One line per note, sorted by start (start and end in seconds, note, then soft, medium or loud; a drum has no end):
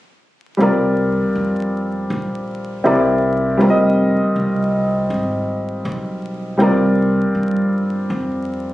0.57 1.19 C2 medium
0.57 2.80 G3 medium
0.57 2.81 C4 medium
0.57 2.81 F4 medium
0.62 2.82 A#4 medium
0.62 2.83 D5 medium
1.22 muted upright bass stroke soft
1.35 2.07 F2 medium
2.10 2.82 A#1 medium
2.84 3.57 C2 medium
2.84 3.58 C4 medium
2.84 3.60 E4 medium
2.84 3.60 G4 medium
2.84 3.61 A#4 medium
2.84 3.61 D5 medium
3.57 4.19 F1 medium
3.57 6.55 G3 medium
3.57 6.56 C4 medium
3.57 6.57 F4 medium
3.62 6.57 A#4 medium
3.62 3.70 D5 soft
3.70 6.61 D#5 medium
4.22 muted upright bass stroke soft
4.36 5.07 C2 medium
5.10 5.82 G#1 medium
5.85 6.56 B1 medium
6.57 7.18 C2 medium
6.57 8.74 G3 medium
6.57 8.74 C4 medium
6.57 8.74 F4 medium
6.62 8.74 A#4 medium
6.62 8.74 D5 medium
7.21 muted upright bass stroke soft
7.35 8.06 G2 medium
8.10 8.74 F2 medium